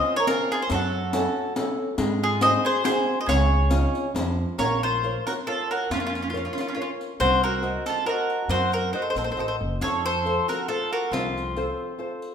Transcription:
Already playing: C4 C#4 F4 C5 D#5
0.16 A#4 C#5
0.27 C4 C#4 F4 A#4, riq
0.52 F4 G#4
0.62 G#4 C5
0.70 F#2 F#3 A4, riq
0.74 F#4
1.13 C#4 F#4 A4, riq
1.56 C#4 F#4 A4, riq
1.98 G#2 G#3, riq
2.23 F4 G#4
2.41 F#4 G#4 C5 D#5, riq
2.65 G#4 C5
2.84 F#4 G#4 C5, riq
3.21 C5 D#5
3.26 C#2 C#3 G#4 C#5, riq
3.70 C#4 D#4 F4, riq
3.95 riq
4.14 F2 F3, riq
4.58 A#1 A#3 A#4 C#5, riq
4.83 F4 C5, riq
5.03 F4 A#4 C#5, riq
5.27 F#4 A#4, riq
5.47 F4 A4 A#4 C#5
5.71 F#4 A#4, riq
5.90 F2 A#3 C#4 F4, riq
6.00 C#4 F4
6.07 C#4 F4
6.15 C#4 F4, riq
6.22 C#4 F4
6.30 C#4 F4 A#4
6.34 F4 C#5, riq
6.39 C#4
6.45 C#4 F4
6.53 C#4 F4
6.58 F4, riq
6.63 C#4
6.68 C#4 F4
6.75 C#4 F4 A#4 C#5
6.82 C#4 F4
7.01 riq
7.20 C2 C4 F#4 C5, riq
7.44 F#4 A#4, riq
7.62 F#4 C5 D#5, riq
7.86 F4 A4, riq
8.06 F#4 A#4 C5 D#5
8.30 riq
8.48 F#2 C4 F#4 C5, riq
8.72 F#4 A#4, riq
8.93 F#4 C5 D#5
9.02 A4 C5
9.10 A4 C5
9.15 A#1 A4 C5, riq
9.24 A4 C5
9.32 A4 C5
9.36 A1 F#4 A4 C5 D#5, riq
9.48 A4 C5
9.61 F#1
9.81 F2 F3 A4 C#5, riq
10.06 A4 C5
10.25 F4 A4 C5, riq
10.48 F#4 A#4, riq
10.68 F4 A4 C5
10.92 F#4 A#4, riq
11.11 C2 F3 C4 F4, riq
11.37 riq
11.56 F4 A4 C5, riq
11.98 F4 A4 C5
12.22 riq

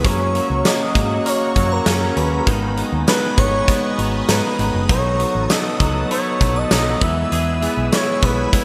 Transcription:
Already playing: B3 G#4
0.04 F#2 F#3 A#3 C#4 F#4 C#5 F#5 C#6, kick, closed hi-hat
0.34 F#3 A#3 C#4 F#4 A#4, closed hi-hat
0.50 C#2
0.64 A#3 C#4 F#4 C#5 D#5 D#6, snare, closed hi-hat, tambourine
0.94 G#2 F#3 A#3 C#4 F#4 G#4, kick, closed hi-hat
1.25 A#3 C#4 F#4 C#5 D#5 C#6, closed hi-hat
1.55 F#2 F#3 A#3 C#4 F#4 C#5, kick, closed hi-hat
1.72 A#4 A#5
1.86 F#2 A#3 C#4 F#4 G#4, snare, closed hi-hat, tambourine
2.16 D#2 F#3 A#3 C#4 F#4 B4 C#5 B5, closed hi-hat
2.46 G#1 D#3 G#3 B3 D#4 B4 D#5 G#5 D#6, kick, closed hi-hat
2.77 D#3 G#3 B3 D#4 B4, closed hi-hat
2.92 D#2
3.07 G#3 B3 D#4 B4 B5, snare, closed hi-hat, tambourine
3.37 G#1 D#3 G#3 B3 D#4 B4 C#5 C#6, kick, closed hi-hat
3.68 G#3 B3 D#4 B4, kick, closed hi-hat
3.98 G#1 D#3 G#3 B3 D#4 F#4, closed hi-hat
4.28 G#2 G#3 B3 D#4 G#4 B4 B5, snare, closed hi-hat, tambourine
4.59 G#1 D#3 G#3 B3 D#4 B4, closed hi-hat
4.74 F#1
4.89 B1 F#3 B3 D#4 A4 B4 C#5 F#5 A5 C#6, kick, closed hi-hat
5.19 F#3 B3 D#4 A4, closed hi-hat
5.35 A1
5.50 F#3 A3 B3 D#4 B4 D#5 D#6, snare, closed hi-hat, tambourine
5.80 C#2 F#3 B3 D#4 A4, kick, closed hi-hat
6.10 F#3 A3 B3 D#4 A4 C#5 C#6, closed hi-hat
6.41 B1 F#3 B3 D#4 A4, kick, closed hi-hat
6.56 D#5 D#6
6.71 B1 F#3 B3 D#4 A4, snare, closed hi-hat, tambourine
7.01 E2 E3 G#3 B3 E4 B4 E5 G#5 E6, kick, closed hi-hat
7.32 E2 E3 G#4, closed hi-hat
7.61 G#3 B3 E4 G#4, closed hi-hat
7.77 B1
7.92 G#3 B3 E4 B4 C#5 C#6, snare, closed hi-hat, tambourine
8.22 B1 G#3 B3 E4 A#4 B4 B5, kick, closed hi-hat
8.52 G#3 B3 E4 B4, kick, closed hi-hat

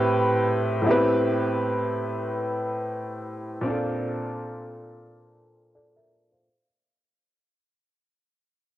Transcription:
Already playing: A2 C4 E4 G4 B4
0.82 A2 B3
0.87 C4 E4 G4
0.91 B4
3.61 A#2 C4
3.65 D4 F4
3.70 A4
5.75 A4 D5
5.96 A#4 E5
6.31 C5 F5

